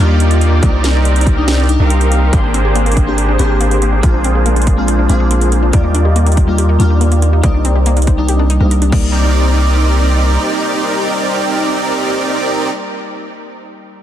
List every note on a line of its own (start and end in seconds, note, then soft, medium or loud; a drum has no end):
0.00 0.60 D#2 medium
0.00 0.60 G3 medium
0.00 0.60 A#3 medium
0.00 0.62 A#3 medium
0.00 0.64 D4 medium
0.00 0.60 D#4 medium
0.00 0.60 F4 medium
0.00 0.65 F4 loud
0.00 0.60 G4 medium
0.00 0.60 D5 medium
0.00 0.63 D5 medium
0.20 closed hi-hat medium
0.31 closed hi-hat medium
0.41 closed hi-hat medium
0.60 1.78 C2 medium
0.60 1.33 G3 medium
0.60 1.34 A#3 medium
0.60 1.67 C4 medium
0.60 1.66 D#4 medium
0.60 1.35 D#4 medium
0.60 1.66 G4 medium
0.60 1.66 A#4 medium
0.60 1.66 D5 loud
0.60 1.35 D5 medium
0.60 kick loud
0.60 closed hi-hat medium
0.84 snare medium
0.84 closed hi-hat medium
1.05 closed hi-hat medium
1.16 closed hi-hat soft
1.21 closed hi-hat medium
1.27 kick medium
1.27 closed hi-hat medium
1.36 1.66 G3 medium
1.36 1.66 A#3 medium
1.36 1.67 D4 medium
1.36 1.67 D#4 medium
1.48 snare loud
1.48 closed hi-hat medium
1.68 1.80 G3 medium
1.68 1.81 A#3 medium
1.68 1.81 D4 medium
1.68 1.81 D#4 loud
1.68 closed hi-hat medium
1.80 2.31 C2 medium
1.80 2.30 C4 medium
1.80 2.30 D#4 medium
1.80 2.30 G4 medium
1.80 2.30 A#4 medium
1.80 2.30 F5 medium
1.90 closed hi-hat medium
2.01 closed hi-hat medium
2.12 closed hi-hat medium
2.31 3.37 G#1 medium
2.31 3.04 A#3 medium
2.31 2.39 A#3 loud
2.31 3.37 A#3 medium
2.31 3.04 C4 medium
2.31 3.37 D4 medium
2.31 3.05 D4 medium
2.31 3.37 G4 medium
2.31 3.37 G#4 medium
2.31 3.37 C5 loud
2.31 3.06 G5 medium
2.31 kick loud
2.31 closed hi-hat medium
2.44 2.49 D4 medium
2.54 2.63 C4 loud
2.54 closed hi-hat medium
2.65 2.73 G4 medium
2.75 2.84 A#3 loud
2.75 closed hi-hat medium
2.86 2.90 A#3 medium
2.86 closed hi-hat soft
2.92 closed hi-hat medium
2.97 3.02 A#4 medium
2.97 kick medium
2.97 closed hi-hat medium
3.06 3.36 A#3 medium
3.06 3.37 C4 medium
3.06 3.13 D4 medium
3.06 3.37 D4 medium
3.06 3.37 G4 medium
3.18 3.27 G4 medium
3.18 closed hi-hat medium
3.29 3.34 D4 medium
3.38 4.01 G#1 medium
3.38 3.51 A#3 medium
3.38 4.01 A#3 medium
3.38 3.51 C4 medium
3.38 3.43 C4 medium
3.38 4.01 D4 medium
3.38 3.51 D4 medium
3.38 4.01 G4 medium
3.38 3.52 G4 loud
3.38 4.01 G#4 medium
3.38 4.01 C5 medium
3.38 closed hi-hat medium
3.50 3.59 G4 medium
3.61 3.69 A#3 loud
3.61 closed hi-hat medium
3.71 3.75 A#3 medium
3.71 closed hi-hat medium
3.82 3.85 A#3 medium
3.82 closed hi-hat medium
3.93 3.98 D4 medium
4.01 5.07 A#1 medium
4.01 4.74 G#3 medium
4.01 5.07 A#3 medium
4.01 4.09 A#3 loud
4.01 4.75 C4 medium
4.01 5.07 D4 medium
4.01 4.75 D4 medium
4.01 5.07 F4 medium
4.01 4.76 F4 medium
4.01 5.07 G#4 medium
4.01 kick loud
4.01 closed hi-hat medium
4.14 4.20 D4 medium
4.24 4.33 C4 loud
4.24 closed hi-hat medium
4.35 4.44 G#4 medium
4.46 4.54 A#3 loud
4.46 closed hi-hat medium
4.56 4.60 A#3 medium
4.56 closed hi-hat soft
4.62 closed hi-hat medium
4.67 4.73 C5 medium
4.67 kick medium
4.67 closed hi-hat medium
4.77 5.06 G#3 medium
4.77 5.07 C4 medium
4.77 4.83 D4 medium
4.77 5.07 D4 medium
4.77 5.07 F4 medium
4.88 4.97 G#4 medium
4.88 closed hi-hat medium
4.99 5.05 D4 medium
5.08 5.71 A#1 medium
5.08 5.21 G#3 medium
5.08 5.71 A#3 medium
5.08 5.21 C4 medium
5.08 5.13 C4 medium
5.08 5.71 D4 medium
5.08 5.21 D4 medium
5.08 5.71 F4 medium
5.08 5.22 F4 loud
5.08 5.71 G#4 medium
5.08 5.71 C5 medium
5.08 closed hi-hat medium
5.20 5.29 G#4 medium
5.31 5.39 A#3 loud
5.31 closed hi-hat medium
5.41 5.45 A#3 medium
5.41 closed hi-hat medium
5.52 5.55 A#3 medium
5.52 closed hi-hat medium
5.63 5.68 D4 medium
5.71 6.78 D#2 medium
5.71 6.44 G3 medium
5.71 6.45 A#3 medium
5.71 5.79 A#3 loud
5.71 6.77 A#3 medium
5.71 6.77 F4 medium
5.71 6.46 F4 medium
5.71 6.77 G4 medium
5.71 6.77 D5 loud
5.71 6.46 D5 medium
5.71 kick loud
5.71 closed hi-hat medium
5.84 5.90 D#4 medium
5.94 6.03 D4 loud
5.94 closed hi-hat medium
6.05 6.14 G4 medium
6.16 6.25 A#3 loud
6.16 closed hi-hat medium
6.26 6.30 A#3 medium
6.26 closed hi-hat soft
6.32 closed hi-hat medium
6.37 6.43 D5 medium
6.37 kick medium
6.37 closed hi-hat medium
6.47 6.77 G3 medium
6.47 6.77 A#3 medium
6.47 6.77 D4 medium
6.47 6.53 D#4 medium
6.47 6.78 F4 medium
6.58 6.67 G4 medium
6.58 closed hi-hat medium
6.69 6.75 D#4 medium
6.79 7.41 D#2 medium
6.79 6.91 G3 medium
6.79 6.91 A#3 medium
6.79 7.41 A#3 medium
6.79 6.83 D4 medium
6.79 6.92 D4 medium
6.79 7.41 D#4 medium
6.79 7.41 F4 medium
6.79 6.92 F4 loud
6.79 7.41 G4 medium
6.79 7.41 D5 medium
6.79 closed hi-hat medium
6.90 6.99 G4 medium
7.01 7.10 A#3 loud
7.01 closed hi-hat medium
7.12 7.15 A#3 medium
7.12 closed hi-hat medium
7.22 7.26 A#3 medium
7.22 closed hi-hat medium
7.33 7.39 D#4 medium
7.41 8.58 C2 medium
7.41 8.14 G3 medium
7.41 8.15 A#3 medium
7.41 7.49 A#3 loud
7.41 8.47 C4 medium
7.41 8.47 G4 medium
7.41 8.47 A#4 medium
7.41 8.47 D5 loud
7.41 8.16 D5 medium
7.41 kick loud
7.41 closed hi-hat medium
7.45 8.16 D#4 medium
7.54 7.60 D4 medium
7.65 7.74 C4 loud
7.65 closed hi-hat medium
7.75 7.84 G4 medium
7.86 7.95 A#3 loud
7.86 closed hi-hat medium
7.97 8.00 A#3 medium
7.97 closed hi-hat soft
8.02 closed hi-hat medium
8.07 8.13 C5 medium
8.07 kick medium
8.07 closed hi-hat medium
8.17 8.47 G3 medium
8.17 8.47 A#3 medium
8.17 8.24 D4 medium
8.17 8.48 D4 medium
8.17 8.48 D#4 medium
8.29 8.37 G4 medium
8.29 closed hi-hat medium
8.39 8.45 D4 medium
8.50 8.53 D#4 loud
8.50 closed hi-hat medium
8.60 8.92 C2 medium
8.60 8.88 G3 medium
8.60 8.90 A#3 medium
8.60 8.91 C4 medium
8.60 8.90 D4 medium
8.60 8.91 D#4 medium
8.60 8.91 G4 medium
8.60 8.64 A#4 medium
8.60 8.91 A#4 medium
8.60 8.92 F5 medium
8.71 8.75 A#4 medium
8.71 closed hi-hat medium
8.82 8.85 D4 medium
8.82 closed hi-hat medium
8.90 10.37 C2 medium
8.90 12.67 G3 medium
8.90 12.69 A#3 medium
8.90 9.32 A#3 medium
8.90 12.70 C4 medium
8.90 12.69 D#4 medium
8.90 12.69 G4 medium
8.90 12.69 A#4 medium
8.90 12.70 D5 medium
8.90 12.71 D5 medium
8.90 kick loud
8.90 crash medium
8.96 12.73 D#4 medium